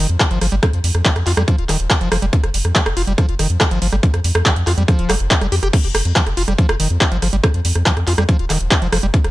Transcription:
0.10 analog synth bass F2
0.20 acid bass G#3, kick, cross-stick, clap, closed hi-hat
0.31 analog synth bass G1, acid bass F3, closed hi-hat
0.41 analog synth bass G1, acid bass F3, cross-stick, open hi-hat
0.52 analog synth bass G1, acid bass G3, closed hi-hat
0.63 acid bass F3, kick, cross-stick, closed hi-hat
0.73 analog synth bass F2, closed hi-hat
0.84 analog synth bass F2, open hi-hat
0.95 analog synth bass F2, cross-stick, closed hi-hat
1.05 acid bass F3, kick, clap, closed hi-hat
1.16 analog synth bass F2, cross-stick, closed hi-hat
1.27 analog synth bass F2, acid bass F4, clap, open hi-hat
1.37 analog synth bass F2, acid bass G3, cross-stick, closed hi-hat
1.48 acid bass F3, kick, closed hi-hat
1.58 analog synth bass D#1, closed hi-hat
1.69 analog synth bass D#1, acid bass D#3, cross-stick, clap, open hi-hat
1.80 analog synth bass D#1, closed hi-hat
1.90 acid bass G#3, kick, cross-stick, clap, closed hi-hat
2.01 analog synth bass F1, acid bass F3, closed hi-hat
2.12 analog synth bass F1, acid bass F3, cross-stick, open hi-hat
2.22 analog synth bass F1, acid bass G3, closed hi-hat
2.33 acid bass F3, kick, closed hi-hat
2.44 analog synth bass F1, cross-stick, closed hi-hat
2.54 analog synth bass F1, open hi-hat
2.65 analog synth bass F2, cross-stick, closed hi-hat
2.75 acid bass F3, kick, clap, closed hi-hat
2.86 analog synth bass F1, cross-stick, closed hi-hat
2.97 analog synth bass F1, acid bass F4, open hi-hat
3.07 analog synth bass F1, acid bass G3, closed hi-hat
3.18 acid bass F3, kick, cross-stick, closed hi-hat
3.29 analog synth bass F1, closed hi-hat
3.39 analog synth bass F1, acid bass D#3, cross-stick, open hi-hat
3.50 analog synth bass F2, closed hi-hat
3.61 acid bass G#3, kick, cross-stick, clap, closed hi-hat
3.71 analog synth bass G1, acid bass F3, closed hi-hat
3.82 analog synth bass G1, acid bass F3, open hi-hat
3.92 analog synth bass G1, acid bass G3, cross-stick, closed hi-hat
4.03 acid bass F3, kick, closed hi-hat
4.14 analog synth bass F2, cross-stick, closed hi-hat
4.24 analog synth bass F2, open hi-hat
4.35 analog synth bass F2, cross-stick, closed hi-hat
4.46 acid bass F3, kick, clap, closed hi-hat
4.56 analog synth bass F2, closed hi-hat
4.67 analog synth bass F2, acid bass F4, cross-stick, clap, open hi-hat
4.78 analog synth bass F2, acid bass G3, closed hi-hat
4.88 acid bass F3, kick, cross-stick, closed hi-hat
4.99 analog synth bass D#1, closed hi-hat
5.10 analog synth bass F1, acid bass G3, cross-stick, clap, open hi-hat
5.20 analog synth bass F1, closed hi-hat
5.31 acid bass D#3, kick, clap, closed hi-hat
5.41 analog synth bass F1, acid bass G3, cross-stick, closed hi-hat
5.52 analog synth bass F2, acid bass G4, open hi-hat
5.63 analog synth bass F1, acid bass G4, cross-stick, closed hi-hat
5.73 acid bass F3, kick, cross-stick, closed hi-hat, crash
5.84 analog synth bass F1, closed hi-hat
5.95 analog synth bass F1, cross-stick, open hi-hat
6.05 analog synth bass F2, closed hi-hat
6.16 acid bass F3, kick, clap, closed hi-hat
6.27 analog synth bass F1, cross-stick, closed hi-hat
6.37 analog synth bass F1, acid bass F4, open hi-hat
6.48 analog synth bass F1, acid bass G3, cross-stick, closed hi-hat
6.58 acid bass F3, kick, closed hi-hat
6.69 analog synth bass F1, cross-stick, closed hi-hat
6.80 analog synth bass F1, acid bass D#3, open hi-hat
6.90 analog synth bass F2, closed hi-hat
7.01 acid bass G#3, kick, cross-stick, clap, closed hi-hat
7.12 analog synth bass G1, acid bass F3, closed hi-hat
7.22 analog synth bass G1, acid bass F3, cross-stick, open hi-hat
7.33 analog synth bass G1, acid bass G3, closed hi-hat
7.44 acid bass F3, kick, cross-stick, closed hi-hat
7.54 analog synth bass F2, closed hi-hat
7.65 analog synth bass F2, open hi-hat
7.75 analog synth bass F2, cross-stick, closed hi-hat
7.86 acid bass F3, kick, clap, closed hi-hat
7.97 analog synth bass F2, cross-stick, closed hi-hat
8.07 analog synth bass F2, acid bass F4, clap, open hi-hat
8.18 analog synth bass F2, acid bass G3, cross-stick, closed hi-hat
8.29 acid bass F3, kick, closed hi-hat
8.39 analog synth bass D#1, closed hi-hat
8.50 analog synth bass D#1, acid bass D#3, cross-stick, clap, open hi-hat
8.61 analog synth bass D#1, closed hi-hat
8.71 acid bass G#3, kick, cross-stick, clap, closed hi-hat
8.82 analog synth bass F1, acid bass F3, closed hi-hat
8.93 analog synth bass F1, acid bass F3, cross-stick, open hi-hat
9.03 analog synth bass F1, acid bass G3, closed hi-hat
9.14 acid bass F3, kick, closed hi-hat
9.24 analog synth bass F1, cross-stick, closed hi-hat

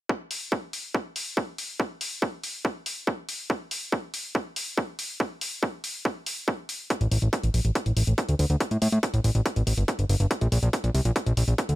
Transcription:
0.09 kick
0.31 open hi-hat
0.52 kick
0.73 open hi-hat
0.95 kick
1.16 open hi-hat
1.37 kick
1.58 open hi-hat
1.80 kick
2.01 open hi-hat
2.22 kick
2.44 open hi-hat
2.65 kick
2.86 open hi-hat
3.07 kick
3.29 open hi-hat
3.50 kick
3.71 open hi-hat
3.92 kick
4.14 open hi-hat
4.35 kick
4.56 open hi-hat
4.78 kick
4.99 open hi-hat
5.20 kick
5.41 open hi-hat
5.63 kick
5.84 open hi-hat
6.05 kick
6.26 open hi-hat
6.48 kick
6.69 open hi-hat
6.90 kick, closed hi-hat
7.01 analog synth bass A1, closed hi-hat
7.12 analog synth bass A1, open hi-hat
7.22 analog synth bass A1, closed hi-hat
7.33 kick, closed hi-hat
7.43 analog synth bass A1, closed hi-hat
7.54 analog synth bass A#1, open hi-hat
7.65 analog synth bass A1, closed hi-hat
7.75 kick, closed hi-hat
7.86 analog synth bass A1, closed hi-hat
7.97 analog synth bass A1, open hi-hat
8.07 analog synth bass A1, closed hi-hat
8.18 kick, closed hi-hat
8.29 analog synth bass D2, closed hi-hat
8.39 analog synth bass D2, open hi-hat
8.50 analog synth bass D2, closed hi-hat
8.60 kick, closed hi-hat
8.71 analog synth bass A2, closed hi-hat
8.82 analog synth bass A2, open hi-hat
8.92 analog synth bass A2, closed hi-hat
9.03 kick, closed hi-hat
9.14 analog synth bass A1, closed hi-hat
9.24 analog synth bass A1, open hi-hat
9.35 analog synth bass A1, closed hi-hat
9.46 kick, closed hi-hat
9.56 analog synth bass A1, closed hi-hat
9.67 analog synth bass A1, open hi-hat
9.78 analog synth bass G1, closed hi-hat
9.88 kick, closed hi-hat
9.99 analog synth bass G1, closed hi-hat
10.09 analog synth bass G1, open hi-hat
10.20 analog synth bass G1, closed hi-hat
10.31 kick, closed hi-hat
10.41 analog synth bass A#1, closed hi-hat
10.52 analog synth bass A#1, open hi-hat
10.63 analog synth bass A#1, closed hi-hat
10.73 kick, closed hi-hat
10.84 analog synth bass A#1, closed hi-hat
10.95 analog synth bass C2, open hi-hat
11.05 analog synth bass A#1, closed hi-hat
11.16 kick, closed hi-hat
11.26 analog synth bass A#1, closed hi-hat
11.37 analog synth bass A#1, open hi-hat
11.48 analog synth bass A#1, closed hi-hat
11.58 kick, closed hi-hat
11.69 analog synth bass D2, closed hi-hat

